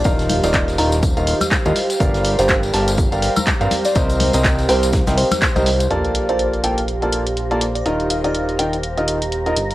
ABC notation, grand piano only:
X:1
M:4/4
L:1/16
Q:"Swing 16ths" 1/4=123
K:Eblyd
V:1 name="Grand piano"
[E,FBef]3 [E,FBef]3 [E,FBeb] z2 [E,FBef]2 z2 [G,FBef] z2 | [G,GBdf]3 [G,GBdf]3 [G,GBda] z2 [G,GBdf]2 z2 [CGBdf] z2 | [CGBce]3 [CGBce]3 [CGBcg] z2 [CGBce]2 z2 [CGBce] z2 | [B,FABd]3 [B,FABd]3 [B,FABg] z2 [B,FABd]2 z2 [B,FABd] z2 |
[E,EFBe]3 [E,EFBe]3 [E,EFBg] z2 [E,EFBe]2 z2 [EFBe] z2 |]